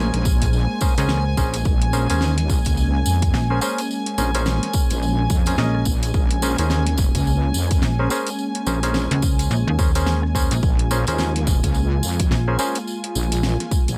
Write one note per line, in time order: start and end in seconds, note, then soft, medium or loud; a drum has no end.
0.00 0.11 A#1 loud
0.00 13.98 G#3 medium
0.00 13.98 A#3 medium
0.00 0.79 C#4 medium
0.00 0.79 G#4 medium
0.00 0.79 A#4 medium
0.00 0.79 C5 loud
0.00 1.65 C5 medium
0.00 13.98 G#5 medium
0.14 0.67 A#1 loud
0.14 cross-stick soft
0.14 snare soft
0.14 closed hi-hat medium
0.25 kick loud
0.25 tambourine medium
0.42 kick medium
0.42 closed hi-hat medium
0.42 tambourine soft
0.53 tambourine soft
0.81 0.94 C#4 medium
0.81 0.94 G#4 medium
0.81 0.94 A#4 medium
0.81 0.94 C5 loud
0.81 kick loud
0.81 tambourine medium
0.98 1.36 C#2 loud
0.98 1.24 C#4 medium
0.98 1.24 G#4 medium
0.98 1.24 A#4 medium
0.98 1.24 C5 medium
0.98 closed hi-hat medium
0.98 tambourine medium
1.09 snare loud
1.09 tambourine soft
1.17 cross-stick medium
1.37 1.64 A#1 medium
1.37 1.56 C#4 medium
1.37 1.56 G#4 medium
1.37 1.56 A#4 medium
1.37 1.56 C5 loud
1.37 kick medium
1.37 tambourine medium
1.53 closed hi-hat medium
1.53 tambourine soft
1.65 2.08 A#1 medium
1.65 10.62 C#4 medium
1.65 kick loud
1.65 tambourine soft
1.82 closed hi-hat medium
1.93 2.08 C#4 medium
1.93 2.08 G#4 medium
1.93 2.08 A#4 medium
1.93 2.08 C5 loud
1.93 tambourine medium
2.10 2.64 D#2 loud
2.10 2.36 C#4 medium
2.10 2.36 G#4 medium
2.10 2.36 A#4 medium
2.10 2.36 C5 medium
2.10 closed hi-hat medium
2.10 tambourine soft
2.21 snare loud
2.21 tambourine soft
2.38 snare soft
2.38 closed hi-hat medium
2.50 kick loud
2.50 tambourine medium
2.65 3.04 C#2 medium
2.65 kick medium
2.65 closed hi-hat medium
2.65 tambourine medium
2.77 tambourine soft
3.06 3.32 F2 loud
3.06 tambourine loud
3.22 kick loud
3.22 closed hi-hat medium
3.22 tambourine medium
3.34 3.60 A#1 loud
3.34 snare loud
3.34 tambourine soft
3.50 3.60 C#4 medium
3.50 3.60 G#4 medium
3.50 3.60 A#4 medium
3.50 3.60 C5 medium
3.61 3.81 C#4 loud
3.61 3.81 G#4 medium
3.61 3.81 A#4 medium
3.61 3.81 C5 loud
3.61 tambourine loud
3.78 closed hi-hat medium
3.78 tambourine medium
3.91 tambourine soft
4.06 closed hi-hat medium
4.18 4.60 A#1 loud
4.18 4.31 C#4 medium
4.18 4.31 G#4 medium
4.18 4.31 A#4 medium
4.18 4.31 C5 medium
4.18 tambourine loud
4.34 5.43 C#4 loud
4.34 5.44 G#4 medium
4.34 5.44 A#4 medium
4.34 5.43 C5 loud
4.34 closed hi-hat medium
4.34 tambourine medium
4.46 snare loud
4.46 tambourine soft
4.63 cross-stick soft
4.63 snare soft
4.63 closed hi-hat medium
4.73 kick loud
4.73 tambourine medium
4.90 5.28 A#1 loud
4.90 closed hi-hat medium
4.90 tambourine medium
5.03 tambourine soft
5.30 5.56 F2 loud
5.30 kick loud
5.30 tambourine loud
5.46 5.55 C#4 medium
5.46 5.55 G#4 medium
5.46 5.55 A#4 medium
5.46 5.55 C5 medium
5.46 closed hi-hat medium
5.46 tambourine medium
5.58 5.84 A#1 loud
5.58 5.85 C#4 medium
5.58 5.85 G#4 medium
5.58 5.85 A#4 medium
5.58 5.85 D#5 medium
5.58 snare loud
5.58 tambourine soft
5.75 cross-stick medium
5.85 6.12 A#1 loud
5.85 kick medium
5.85 tambourine medium
6.03 closed hi-hat medium
6.03 tambourine medium
6.14 6.56 A#1 medium
6.14 kick loud
6.14 tambourine soft
6.31 closed hi-hat medium
6.42 6.57 C#4 medium
6.42 6.56 G#4 medium
6.42 6.57 A#4 medium
6.42 6.56 C5 loud
6.42 tambourine loud
6.58 7.12 D#2 loud
6.58 6.85 C#4 medium
6.58 6.85 G#4 medium
6.58 6.85 A#4 medium
6.58 6.85 C5 medium
6.58 closed hi-hat medium
6.58 tambourine medium
6.70 snare loud
6.70 tambourine soft
6.87 snare soft
6.87 closed hi-hat medium
6.98 kick loud
6.98 tambourine loud
7.15 7.53 C#2 medium
7.15 kick medium
7.15 closed hi-hat medium
7.15 tambourine medium
7.27 tambourine soft
7.54 7.81 F2 loud
7.54 tambourine loud
7.71 kick loud
7.71 closed hi-hat medium
7.71 tambourine medium
7.82 8.09 A#1 loud
7.82 snare loud
7.82 tambourine soft
7.99 8.09 C#4 medium
7.99 8.09 G#4 medium
7.99 8.09 A#4 medium
7.99 8.09 C5 medium
8.10 8.29 C#4 loud
8.10 8.29 G#4 medium
8.10 8.29 A#4 medium
8.10 8.29 C5 loud
8.10 tambourine medium
8.27 closed hi-hat medium
8.27 tambourine medium
8.39 tambourine soft
8.55 closed hi-hat medium
8.67 9.09 A#1 loud
8.67 8.79 C#4 medium
8.67 8.79 G#4 medium
8.67 8.79 A#4 medium
8.67 8.79 C5 medium
8.67 tambourine medium
8.83 9.76 C#4 medium
8.83 9.76 G#4 medium
8.83 9.76 A#4 medium
8.83 9.76 C5 loud
8.83 closed hi-hat medium
8.83 tambourine medium
8.94 snare loud
8.94 tambourine soft
9.11 9.49 C#2 loud
9.11 cross-stick soft
9.11 snare soft
9.11 closed hi-hat medium
9.22 kick loud
9.22 tambourine loud
9.39 closed hi-hat medium
9.39 tambourine medium
9.51 9.65 A#1 medium
9.51 tambourine soft
9.67 10.49 D#2 loud
9.79 9.91 C#4 medium
9.79 9.91 G#4 medium
9.79 9.91 A#4 medium
9.79 9.91 C5 medium
9.79 kick loud
9.79 tambourine medium
9.95 10.22 C#4 medium
9.95 10.22 G#4 medium
9.95 10.22 A#4 medium
9.95 10.22 C5 medium
9.95 closed hi-hat medium
9.95 tambourine medium
10.06 snare loud
10.06 tambourine soft
10.23 cross-stick soft
10.35 10.54 C#4 medium
10.35 10.54 G#4 medium
10.35 10.54 A#4 medium
10.35 10.54 C5 loud
10.35 kick medium
10.35 tambourine medium
10.51 10.61 A#1 medium
10.51 closed hi-hat medium
10.51 tambourine medium
10.63 11.05 A#1 loud
10.63 13.98 F4 medium
10.63 kick loud
10.63 tambourine soft
10.79 closed hi-hat medium
10.91 11.05 C#4 medium
10.91 11.05 G#4 medium
10.91 11.05 A#4 medium
10.91 11.05 C5 loud
10.91 tambourine loud
11.07 11.61 D#2 loud
11.07 11.34 C#4 medium
11.07 11.34 G#4 medium
11.07 11.34 A#4 medium
11.07 11.34 C5 medium
11.07 closed hi-hat medium
11.07 tambourine medium
11.18 snare loud
11.18 tambourine soft
11.36 snare soft
11.36 closed hi-hat soft
11.47 kick loud
11.47 tambourine loud
11.63 12.01 C#2 loud
11.63 kick medium
11.63 closed hi-hat medium
11.63 tambourine soft
11.74 tambourine soft
12.03 12.29 F2 loud
12.03 tambourine loud
12.19 kick loud
12.19 closed hi-hat medium
12.19 tambourine medium
12.31 12.57 A#1 medium
12.31 snare loud
12.31 tambourine soft
12.48 12.57 C#4 medium
12.48 12.57 G#4 medium
12.48 12.57 A#4 medium
12.48 12.57 C5 medium
12.59 12.78 C#4 loud
12.59 12.78 G#4 medium
12.59 12.78 A#4 medium
12.59 12.78 C5 loud
12.59 tambourine loud
12.75 closed hi-hat medium
12.75 tambourine soft
12.87 tambourine soft
13.04 closed hi-hat medium
13.15 13.57 A#1 loud
13.15 tambourine medium
13.32 closed hi-hat medium
13.32 tambourine medium
13.43 snare loud
13.43 tambourine soft
13.60 cross-stick soft
13.60 snare soft
13.60 closed hi-hat soft
13.71 kick loud
13.71 tambourine medium
13.88 13.98 A#1 medium
13.88 closed hi-hat medium
13.88 tambourine medium